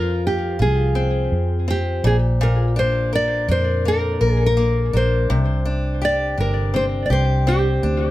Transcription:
Already playing: fingered electric bass F2, steel-string acoustic guitar F3 F4, nylon-string guitar A#4
0.27 nylon-string guitar G4
0.59 fingered electric bass C2, steel-string acoustic guitar F4, nylon-string guitar G#4
0.95 steel-string acoustic guitar C4
1.32 fingered electric bass F2
1.68 steel-string acoustic guitar C4, nylon-string guitar G4
2.04 fingered electric bass A#1, steel-string acoustic guitar A#2, nylon-string guitar G#4
2.41 steel-string acoustic guitar A#2, nylon-string guitar A#4
2.76 steel-string acoustic guitar D4, nylon-string guitar C5
3.13 steel-string acoustic guitar A#4, nylon-string guitar D5
3.48 fingered electric bass F2, steel-string acoustic guitar D4, nylon-string guitar C5
3.85 steel-string acoustic guitar A#3, nylon-string guitar A#4
4.21 fingered electric bass A#1, steel-string acoustic guitar A#4
4.33 nylon-string guitar G#4
4.46 nylon-string guitar A#4
4.57 steel-string acoustic guitar A#3
4.93 fingered electric bass A#1, steel-string acoustic guitar D4, nylon-string guitar C5
5.30 fingered electric bass C2, steel-string acoustic guitar C3
5.65 steel-string acoustic guitar D4
6.02 steel-string acoustic guitar G4, nylon-string guitar D5
6.38 fingered electric bass G1, steel-string acoustic guitar D4, nylon-string guitar A#4
6.74 steel-string acoustic guitar C4, nylon-string guitar C5
7.06 nylon-string guitar D5
7.10 fingered electric bass C2, steel-string acoustic guitar G4, nylon-string guitar C5
7.47 steel-string acoustic guitar C4, nylon-string guitar G4
7.83 fingered electric bass D2, steel-string acoustic guitar D4

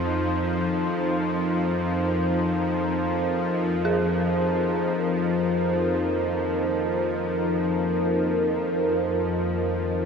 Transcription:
Already playing: synth drone F2 F3, ambient pad D#4 F4 A#4 C5, singing bowl C5
3.85 synth bell G#4

